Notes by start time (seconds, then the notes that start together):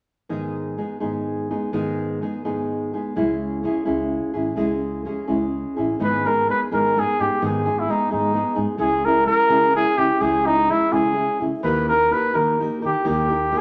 0.29 G#2 D#3 G#3 B3 D#4 G#4
0.78 G#3 B3 D#4 G#4
1.00 G#2 D#3 G#3 B3 D#4 G#4
1.51 G#3 B3 D#4 G#4
1.73 G#2 D#3 G#3 B3 D#4 G#4
2.22 G#3 B3 D#4 G#4
2.45 G#2 D#3 G#3 B3 D#4 G#4
2.93 G#3 B3 D#4 G#4
3.16 C#2 C#3 G#3 C#4 E4 G#4
3.63 G#3 C#4 E4 G#4
3.85 C#2 C#3 G#3 C#4 E4 G#4
4.34 G#1 C#4 E4 G#4
4.56 C#2 C#3 G#3 C#4 E4 G#4
5.05 G#3 C#4 E4 G#4
5.28 C#2 C#3 G#3 C#4 E4 G#4
5.76 A1 C#4 E4 G#4
5.99 G#1 G#2 D#3 G#3 B3 D#4 G#4 B4
6.26 G#3 B3 D#4 G#4 A#4
6.48 G#3 B3 D#4 G#4 B4
6.71 G#2 D#3 G#3 B3 D#4 G#4 A#4
6.96 G#3 B3 D#4 G#4
7.20 G#2 G#3 B3 D#4 G4 G#4
7.42 G#1 G#2 D#3 G#3 B3 D#4 G#4
7.46 G#4
7.66 G#3 B3 D#4 G#4
7.79 E4
7.89 G#3 B3 D#4 G#4
8.11 G#2 D#3 G#3 B3 D#4 G#4
8.33 G#3 B3 D#4 G#4
8.56 G#2 G#3 B3 D#4 G#4
8.78 C#2 C#3 G#3 C#4 E4 G#4
9.05 C#4 E4 G#4 A#4
9.26 G#3 C#4 E4 G#4 A#4
9.49 C#3 G#3 C#4 E4 G#4
9.73 G#3 C#4 E4 G#4
9.96 C#3 C#4 E4 G4 G#4
10.20 C#2 C#3 G#3 C#4 E4 G#4
10.46 C#4 D#4 E4 G#4
10.69 G#3 C#4 E4 G#4
10.91 C#3 G#3 C#4 E4 G#4
11.14 G#3 C#4 E4 G#4
11.40 C#3 C#4 E4 G#4
11.63 D#2 D#3 A#3 D#4 G4 A#4 B4
11.89 D#4 G4 A#4
12.11 A#3 D#4 G4 A#4 B4
12.34 D#3 A#3 D#4 G4 A#4
12.60 A#3 D#4 G4 A#4
12.81 D#4 G4 A#4
12.85 D#3 G4
13.04 D#3 A#3 D#4 G4 A#4
13.08 D#2 G4
13.29 D#4 G4 A#4
13.52 A#3 D#4 G4 A#4
13.57 G#4